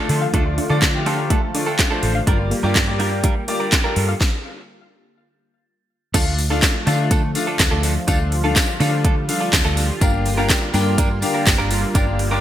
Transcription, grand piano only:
0.00 0.22 A3 medium
0.00 0.22 D4 medium
0.00 0.23 F4 medium
0.00 0.23 A4 loud
0.33 0.59 A3 medium
0.33 0.59 D4 medium
0.33 0.59 F4 medium
0.33 0.59 D5 medium
0.70 0.86 A3 medium
0.70 0.87 D4 medium
0.70 0.87 F4 medium
0.70 0.87 D5 medium
0.94 1.36 A3 medium
0.94 1.36 D4 medium
0.94 1.36 F4 medium
0.94 1.36 G4 loud
1.06 1.17 C6 medium
1.18 1.29 A#5 medium
1.30 1.64 A5 medium
1.54 1.80 A3 medium
1.54 1.80 D4 medium
1.54 1.80 F4 medium
1.54 1.80 D5 medium
1.67 1.78 G5 medium
1.79 2.24 F5 medium
1.91 2.16 A3 medium
1.91 2.16 D4 medium
1.91 2.16 F4 medium
1.91 2.16 C5 medium
2.27 2.52 A#3 medium
2.27 2.52 F4 medium
2.27 2.52 G4 medium
2.27 2.52 D5 loud
2.63 2.80 A#3 medium
2.63 2.80 F4 medium
2.63 2.80 G4 medium
2.63 2.80 D5 loud
2.87 3.29 A#3 medium
2.87 3.29 F4 medium
2.87 3.30 G4 medium
2.87 3.30 D5 loud
3.48 3.73 A#3 medium
3.48 3.73 F4 medium
3.48 3.73 G4 medium
3.48 3.73 D5 loud
3.84 4.09 A#3 medium
3.84 4.10 F4 medium
3.84 4.10 G4 medium
3.84 4.10 A4 loud
6.14 6.39 D4 medium
6.14 6.39 F4 medium
6.14 6.39 A4 medium
6.14 6.40 F5 medium
6.50 6.76 D4 medium
6.50 6.76 F4 medium
6.50 6.76 A4 medium
6.50 6.76 F5 loud
6.87 7.20 D4 medium
6.87 7.20 F4 medium
6.87 7.21 A4 medium
6.87 7.21 F5 medium
7.35 7.85 D4 medium
7.35 7.86 F4 medium
7.35 7.86 A4 medium
7.35 7.86 F5 loud
8.08 8.33 D4 medium
8.08 8.33 F4 medium
8.08 8.33 A4 medium
8.08 8.33 F5 loud
8.44 8.69 D4 medium
8.44 8.69 F4 medium
8.44 8.69 A4 medium
8.44 8.69 F5 loud
8.80 9.14 D4 medium
8.80 9.14 F4 medium
8.80 9.14 A4 medium
8.80 9.14 F5 medium
9.29 9.79 D4 medium
9.29 9.79 F4 medium
9.29 9.79 A4 medium
9.29 9.79 F5 loud
10.01 10.26 D4 medium
10.01 10.26 G4 medium
10.01 10.27 A#4 medium
10.01 10.27 F5 loud
10.37 10.63 D4 medium
10.37 10.63 G4 medium
10.37 10.63 A#4 medium
10.37 10.63 F5 loud
10.74 11.07 D4 medium
10.74 11.07 G4 medium
10.74 11.08 A#4 medium
10.74 11.08 G5 medium
11.22 11.72 D4 medium
11.22 11.73 G4 medium
11.22 11.73 A#4 medium
11.22 11.73 F5 loud
11.95 12.20 D4 medium
11.95 12.20 G4 medium
11.95 12.20 A#4 medium
11.95 12.20 D5 medium
12.31 12.41 D4 medium
12.31 12.41 G4 medium
12.31 12.41 A#4 medium
12.31 12.41 D5 medium

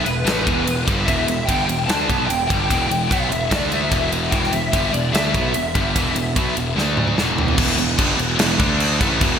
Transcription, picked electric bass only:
0.06 0.25 E1 medium
0.25 0.45 A1 medium
0.47 0.66 E1 medium
0.67 0.86 E1 medium
0.87 1.06 G1 medium
1.08 1.27 E1 medium
1.28 1.47 E1 medium
1.48 1.67 G1 medium
1.68 1.87 E1 medium
1.88 2.07 D2 medium
2.09 2.27 B1 medium
2.28 2.47 E1 medium
2.50 2.69 G1 medium
2.70 2.89 E1 medium
2.89 3.09 E1 medium
3.11 3.29 B1 medium
3.30 3.49 E1 medium
3.51 3.89 D2 loud
3.92 4.29 E1 medium
4.32 4.51 E1 medium
4.53 4.72 E1 medium
4.73 4.92 G1 medium
4.93 5.12 E1 medium
5.13 5.32 D2 medium
5.35 5.53 B1 loud
5.54 5.73 E1 medium
5.75 5.94 G1 medium
5.95 6.14 E1 medium
6.16 6.34 E1 medium
6.36 6.55 B1 medium
6.56 6.75 E1 medium
6.76 7.14 D2 loud
7.17 7.55 E1 medium
7.58 7.77 E1 medium
7.78 7.97 E1 medium
7.99 8.18 G1 loud
8.18 8.37 E1 medium
8.39 8.58 E1 loud
8.60 8.97 D2 loud
9.00 9.19 A1 medium
9.21 9.39 E1 loud

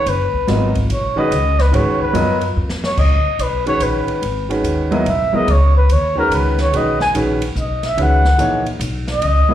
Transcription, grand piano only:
0.47 0.73 F#3 medium
0.47 0.73 B3 medium
0.47 0.73 F4 medium
0.47 0.73 A#4 medium
0.47 0.74 D#5 medium
1.16 1.30 D#3 medium
1.16 1.30 G#3 medium
1.16 1.30 C#4 medium
1.16 1.30 F#4 medium
1.16 1.31 B4 medium
1.72 2.13 D#3 medium
1.72 2.13 G#3 medium
1.72 2.13 C#4 medium
1.72 2.14 F#4 medium
1.72 2.14 B4 medium
2.13 2.39 F#3 medium
2.13 2.39 B3 medium
2.13 2.39 F4 medium
2.13 2.39 A#4 medium
2.13 2.40 D#5 medium
3.66 4.20 D#3 medium
3.66 4.20 G#3 medium
3.66 4.20 C#4 medium
3.66 4.20 F#4 medium
3.66 4.21 B4 medium
4.49 4.89 D#3 medium
4.49 4.89 G#3 medium
4.49 4.89 C#4 medium
4.49 4.89 F#4 medium
4.49 4.90 B4 medium
4.91 5.05 F#3 medium
4.91 5.05 B3 medium
4.91 5.05 E4 medium
4.91 5.05 A#4 medium
4.91 5.05 D#5 medium
5.33 5.46 C#3 medium
5.33 5.46 F#3 medium
5.33 5.46 B3 medium
5.33 5.47 E4 medium
5.33 5.47 A#4 medium
6.15 6.69 D#3 medium
6.15 6.70 G#3 medium
6.15 6.70 C#4 medium
6.15 6.70 F#4 medium
6.15 6.70 B4 medium
6.73 6.98 D#3 medium
6.73 6.98 G#3 medium
6.73 6.98 C#4 medium
6.73 6.98 F#4 medium
6.73 6.98 B4 medium
7.14 7.39 D#3 medium
7.14 7.39 G#3 medium
7.14 7.39 C#4 medium
7.14 7.40 F#4 medium
7.14 7.40 B4 medium
7.97 8.22 D#3 medium
7.97 8.22 G#3 medium
7.97 8.22 C#4 medium
7.97 8.23 F#4 soft
7.97 8.23 B4 medium
8.38 8.63 E3 medium
8.38 8.63 A#3 medium
8.38 8.64 D#4 medium
8.38 8.64 G#4 medium
8.38 8.64 C#5 medium
9.49 9.54 F#3 medium
9.49 9.54 B3 medium
9.49 9.54 E4 medium
9.49 9.54 A#4 medium
9.49 9.54 D#5 medium

